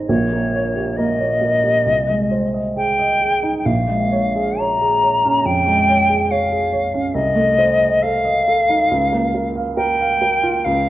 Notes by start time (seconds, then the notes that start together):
Already playing: D#3 C4 D#4 G#4 C5
0.07 A#1 A#2 C#5
0.33 A#3
0.54 C#5
0.76 G4
0.97 A#3 D#5
1.20 C#5
1.42 A#4
1.64 G4
1.86 C2
2.09 G#3
2.31 C5
2.54 D#5
2.77 G#4 G5
2.99 D#5
3.21 G#4
3.43 D#4
3.59 G5
3.65 A#1 F5
3.88 G#3
4.12 C#5
4.36 G#4
4.59 C#5 A#5
4.82 G#4
5.03 C#5
5.25 C#4
5.45 F2 G5
5.66 G#3
5.89 C#5
6.09 G#4
6.31 C#5 F5
6.52 G#4
6.73 C#5
6.94 C#4
7.15 C2 D#5
7.35 A3
7.58 C5
7.81 D#5
8.03 A4 F5
8.25 D#5
8.48 A4
8.69 D#4
8.91 C#2
9.13 A#3
9.34 A#4
9.56 F5
9.77 A#4 G5
10.00 F5
10.22 A#4
10.43 F4
10.65 C#2 F5